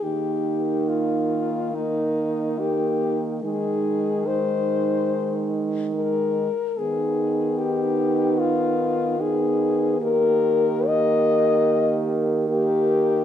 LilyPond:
<<
  \new Staff \with { instrumentName = "French horn" } { \time 4/4 \key ees \major \tempo 4 = 72 g'4 f'4 ees'4 g'4 | aes'4 c''4. r8 bes'4 | aes'4 g'4 f'4 aes'4 | bes'4 ees''4. r8 g'4 | }
  \new Staff \with { instrumentName = "French horn" } { \time 4/4 \key ees \major ees'2 ees'4 ees'4 | ees'4 ees'2~ ees'8 r8 | ees'2. ees'4 | g'4 g'2 g'4 | }
  \new Staff \with { instrumentName = "French horn" } { \time 4/4 \key ees \major bes2 bes4 bes4 | aes4 aes2 aes8 r8 | ces'2. ces'4 | bes4 bes2 bes4 | }
  \new Staff \with { instrumentName = "French horn" } { \clef bass \time 4/4 \key ees \major ees1 | ees2.~ ees8 r8 | ees1 | ees1 | }
>>